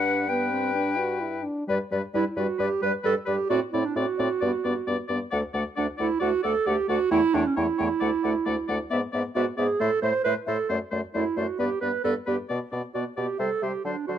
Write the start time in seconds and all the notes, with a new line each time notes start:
Already playing: G2 D4 B4 F#5
0.29 B3 B4 G5
0.51 C4
0.75 D4
0.98 F#4
1.21 E4
1.43 D4
1.68 G2 G3 B4 D5
1.91 G2 G3 B4 D5
2.14 G2 G3 E4 B4 D5
2.37 G2 G3 F#4 B4 D5
2.59 G2 G3 G4 B4 D5
2.81 G2 G3 B4 D5
3.03 G2 G3 A4 B4 D5
3.26 G2 G3 G4 B4 D5
3.49 A2 C4 F#4 D5
3.73 A2 C4 E4 D5
3.85 D4
3.96 A2 C4 F#4 D5
4.18 A2 C4 D5
4.41 G2 B3 D5
4.64 G2 B3 D5
4.87 G2 B3 D5
5.08 G2 B3 D5
5.31 D2 A3 D5 F#5
5.53 D2 A3 D5 F#5
5.76 D2 A3 D4 D5 F#5
5.98 D2 A3 E4 D5 F#5
6.20 D2 A3 F#4 D5 F#5
6.43 D2 A3 A4 D5 F#5
6.66 D2 A3 G4 D5 F#5
6.88 D2 A3 F#4 D5 F#5
7.11 E2 A3 E4 C#5 G5
7.33 E2 A3 D4 C#5 G5
7.46 C#4
7.56 E2 A3 E4 C#5 G5
7.78 E2 A3 C#5 G5
8.01 D2 A3 D5 F#5
8.23 D2 A3 D5 F#5
8.46 D2 A3 D5 F#5
8.68 D2 A3 D5 F#5
8.90 G#2 B3 D5 E5
9.13 G#2 B3 D5 E5
9.35 G#2 B3 F#4 D5 E5
9.57 G#2 B3 G#4 D5 E5
9.80 A2 A3 A4 C5 E5
10.02 A2 A3 C5 E5
10.24 A2 A3 B4 C5 E5
10.46 A2 A3 A4 C5 E5
10.69 F#2 A3 C5 D5
10.91 F#2 A3 C5 D5
11.14 F#2 A3 E4 C5 D5
11.36 F#2 A3 F#4 C5 D5
11.59 G2 B3 G4 B4 D5
11.81 G2 B3 B4 D5
12.04 G2 B3 A4 B4 D5
12.26 G2 B3 G4 B4 D5
12.49 B2 B3 D5
12.72 B2 B3 D5
12.94 B2 B3 F#4 D5
13.16 B2 B3 G4 D5
13.38 C3 G3 A4 C5 E5
13.62 C3 G3 G4 C5 E5
13.85 D3 F#3 D4 C5 D5
14.07 D3 F#3 F#4 C5 D5